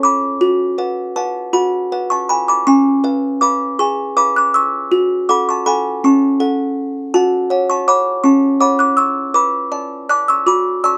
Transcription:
0.00 0.37 A4 medium
0.00 0.37 C#5 medium
0.00 1.12 D6 loud
0.05 1.13 B5 medium
0.41 0.77 F#4 medium
0.78 1.12 B4 medium
0.78 1.12 F#5 medium
1.16 1.50 B4 medium
1.16 1.52 F#5 medium
1.16 1.52 A5 medium
1.53 1.90 F#4 medium
1.53 1.91 F#5 medium
1.53 2.08 B5 medium
1.92 2.63 B4 medium
1.92 2.63 F#5 medium
2.10 2.28 A5 medium
2.10 2.29 C#6 loud
2.29 2.47 G#5 medium
2.29 2.48 B5 loud
2.48 2.66 B5 medium
2.48 2.67 D6 loud
2.67 3.03 C#4 medium
2.67 3.38 G#5 medium
2.67 3.39 C#6 loud
3.04 3.38 B4 medium
3.04 3.38 F5 medium
3.41 3.76 B4 medium
3.41 3.76 F5 medium
3.41 3.77 B5 medium
3.41 3.78 D6 loud
3.79 4.16 G#4 medium
3.79 4.15 G#5 medium
3.79 4.15 C#6 loud
4.17 4.87 B4 medium
4.17 4.87 F5 medium
4.17 4.35 B5 medium
4.17 4.35 D6 loud
4.36 4.54 D6 medium
4.36 4.54 F#6 loud
4.54 5.25 C#6 medium
4.54 5.26 E6 loud
4.91 5.28 F#4 medium
5.29 5.63 A4 medium
5.29 5.63 F#5 medium
5.29 5.47 B5 medium
5.29 5.48 D6 loud
5.49 5.66 A5 medium
5.49 5.67 C#6 loud
5.66 5.99 A4 medium
5.66 6.00 F#5 medium
5.66 6.01 G#5 medium
5.66 6.02 B5 loud
6.04 6.39 C#4 medium
6.04 6.74 A5 medium
6.04 6.75 C#6 medium
6.40 7.10 A4 medium
6.40 7.10 F#5 medium
7.14 7.50 F#4 medium
7.14 7.50 F#5 medium
7.14 7.67 A5 loud
7.50 7.83 C#5 medium
7.50 7.84 F#5 medium
7.70 7.87 A5 medium
7.70 7.88 C#6 loud
7.88 8.21 C#5 medium
7.88 8.21 F#5 medium
7.88 8.22 B5 medium
7.88 8.23 D6 loud
8.24 8.60 C#4 medium
8.24 8.59 A5 medium
8.24 8.59 C#6 medium
8.60 9.31 C#5 medium
8.60 9.31 F#5 medium
8.60 8.78 B5 medium
8.60 8.79 D6 loud
8.79 8.97 D6 medium
8.79 8.98 F#6 loud
8.97 9.33 C#6 medium
8.97 9.33 E6 loud
9.34 9.71 B4 medium
9.34 10.06 B5 medium
9.34 10.06 D6 loud
9.72 10.05 D5 medium
9.72 10.06 A5 medium
10.09 10.43 D5 medium
10.09 10.43 A5 medium
10.09 10.27 D6 medium
10.09 10.28 F#6 loud
10.28 10.46 C#6 medium
10.28 10.47 E6 loud
10.46 10.83 F#4 medium
10.46 10.82 B5 medium
10.46 10.82 D6 loud
10.84 10.98 D5 medium
10.84 10.98 A5 medium
10.84 10.98 C#6 medium
10.84 10.98 E6 loud

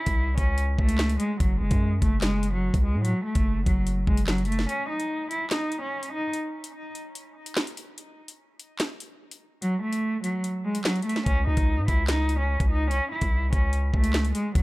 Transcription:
0.00 0.35 E4 medium
0.06 0.36 C2 loud
0.06 kick loud
0.06 closed hi-hat medium
0.38 0.77 C#2 loud
0.38 0.57 C#4 medium
0.38 kick medium
0.38 closed hi-hat medium
0.58 closed hi-hat medium
0.78 1.18 C#2 loud
0.78 1.17 A3 medium
0.78 kick medium
0.89 closed hi-hat medium
0.98 snare loud
0.98 clap medium
1.09 closed hi-hat medium
1.20 1.39 G#3 medium
1.20 closed hi-hat medium
1.40 1.60 F#1 loud
1.40 1.59 F#3 medium
1.40 kick loud
1.40 closed hi-hat medium
1.61 1.70 F#1 loud
1.61 1.99 G#3 medium
1.71 2.01 F#2 loud
1.71 kick loud
1.71 closed hi-hat medium
2.02 2.71 F#1 loud
2.02 2.21 A3 medium
2.02 kick medium
2.02 closed hi-hat medium
2.22 2.51 G#3 medium
2.22 snare loud
2.22 clap medium
2.22 closed hi-hat medium
2.43 closed hi-hat medium
2.53 2.82 F#3 medium
2.74 2.96 C#2 loud
2.74 kick loud
2.74 closed hi-hat medium
2.84 3.03 G#3 medium
2.94 3.14 A2 loud
3.05 3.24 F#3 medium
3.05 closed hi-hat medium
3.25 3.64 A3 medium
3.35 3.65 F#1 loud
3.35 kick loud
3.35 closed hi-hat medium
3.66 4.06 F#1 loud
3.66 3.85 F#3 medium
3.66 kick medium
3.66 closed hi-hat medium
3.87 closed hi-hat medium
4.07 4.67 F#1 loud
4.07 4.26 G#3 medium
4.07 kick medium
4.17 closed hi-hat medium
4.27 4.47 F#3 medium
4.27 snare loud
4.27 clap loud
4.38 closed hi-hat soft
4.45 4.67 A3 medium
4.45 closed hi-hat medium
4.52 closed hi-hat medium
4.59 snare medium
4.69 4.88 C#4 loud
4.69 closed hi-hat medium
4.90 5.28 D#4 medium
5.00 closed hi-hat medium
5.31 5.50 E4 medium
5.31 closed hi-hat medium
5.50 5.80 D#4 medium
5.50 snare loud
5.50 clap medium
5.50 closed hi-hat medium
5.72 closed hi-hat medium
5.82 6.11 C#4 medium
6.03 closed hi-hat medium
6.13 6.32 D#4 medium
6.33 closed hi-hat medium
6.64 closed hi-hat medium
6.95 closed hi-hat medium
7.15 closed hi-hat medium
7.46 closed hi-hat medium
7.56 snare loud
7.56 clap medium
7.67 closed hi-hat medium
7.77 closed hi-hat medium
7.98 closed hi-hat medium
8.28 closed hi-hat medium
8.60 closed hi-hat medium
8.79 snare loud
8.79 clap medium
8.79 closed hi-hat medium
9.00 closed hi-hat medium
9.31 closed hi-hat medium
9.62 9.81 F#3 loud
9.62 closed hi-hat medium
9.82 10.21 A3 medium
9.93 closed hi-hat medium
10.24 10.43 F#3 medium
10.24 closed hi-hat medium
10.44 closed hi-hat medium
10.65 10.84 G#3 medium
10.75 closed hi-hat medium
10.84 11.04 F#3 medium
10.84 snare loud
10.84 clap medium
10.96 closed hi-hat soft
11.02 11.25 A3 medium
11.02 closed hi-hat medium
11.09 closed hi-hat medium
11.16 snare medium
11.26 11.46 C#2 loud
11.26 11.46 C#4 medium
11.26 kick loud
11.26 closed hi-hat medium
11.47 11.57 C#2 loud
11.47 11.86 D#4 medium
11.57 11.79 C#2 loud
11.57 kick loud
11.57 closed hi-hat medium
11.78 11.88 G#2 loud
11.88 12.57 C#2 loud
11.88 12.07 E4 medium
11.88 kick medium
11.88 closed hi-hat medium
12.08 12.38 D#4 medium
12.08 snare loud
12.08 clap medium
12.08 closed hi-hat medium
12.29 closed hi-hat medium
12.39 12.69 C#4 medium
12.60 12.92 C#2 loud
12.60 kick loud
12.60 closed hi-hat medium
12.70 12.89 D#4 medium
12.91 13.01 C2 medium
12.91 13.10 C#4 loud
12.91 closed hi-hat medium
13.12 13.50 E4 medium
13.21 13.51 C2 loud
13.21 kick loud
13.21 closed hi-hat medium
13.53 13.92 C#2 loud
13.53 13.72 C#4 medium
13.53 kick medium
13.53 closed hi-hat medium
13.73 closed hi-hat medium
13.94 14.33 C#2 loud
13.94 14.32 A3 medium
13.94 kick medium
14.04 closed hi-hat medium
14.13 snare loud
14.13 clap medium
14.25 closed hi-hat medium
14.35 14.54 G#3 medium
14.35 closed hi-hat medium
14.55 14.62 F#1 loud
14.55 14.62 F#3 medium
14.55 kick loud
14.55 closed hi-hat medium

